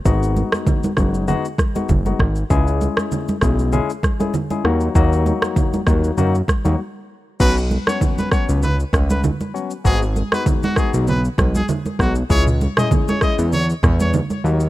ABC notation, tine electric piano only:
X:1
M:4/4
L:1/16
Q:"Swing 16ths" 1/4=98
K:C#dor
V:1 name="Tine electric piano"
[G,B,DF]6 [G,B,DF]2 [G,B,DF] z2 [G,B,DF] z [G,B,DF] z2 | [G,CEG]6 [G,CEG]2 [G,CEG] z2 [G,CEG] z [G,CEG] [F,A,DF]2 | [F,A,DF]6 [F,A,DF]2 [F,A,DF] z2 [F,A,DF] z4 | [F,B,CF] z2 [F,B,CF]3 [F,B,CF]2 z6 [F,B,CF] z |
[G,B,DF] z2 [G,B,DF]3 [G,B,DF]2 z6 [G,B,DF] z | [G,CEG] z2 [G,CEG]3 [G,CEG]2 z6 [F,A,DF] z |]